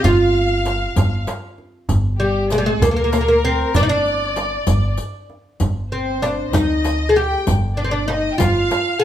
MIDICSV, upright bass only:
0, 0, Header, 1, 2, 480
1, 0, Start_track
1, 0, Tempo, 618812
1, 31, Time_signature, 6, 3, 24, 8
1, 7013, End_track
2, 0, Start_track
2, 0, Title_t, "Upright bass"
2, 0, Program_c, 0, 32
2, 32, Note_on_c, 0, 31, 83
2, 655, Note_off_c, 0, 31, 0
2, 747, Note_on_c, 0, 31, 84
2, 957, Note_off_c, 0, 31, 0
2, 1470, Note_on_c, 0, 31, 88
2, 2188, Note_off_c, 0, 31, 0
2, 2188, Note_on_c, 0, 38, 86
2, 2813, Note_off_c, 0, 38, 0
2, 2909, Note_on_c, 0, 31, 79
2, 3533, Note_off_c, 0, 31, 0
2, 3627, Note_on_c, 0, 31, 83
2, 3837, Note_off_c, 0, 31, 0
2, 4350, Note_on_c, 0, 31, 78
2, 5068, Note_off_c, 0, 31, 0
2, 5068, Note_on_c, 0, 38, 79
2, 5693, Note_off_c, 0, 38, 0
2, 5794, Note_on_c, 0, 31, 80
2, 6417, Note_off_c, 0, 31, 0
2, 6515, Note_on_c, 0, 31, 87
2, 6721, Note_off_c, 0, 31, 0
2, 7013, End_track
0, 0, End_of_file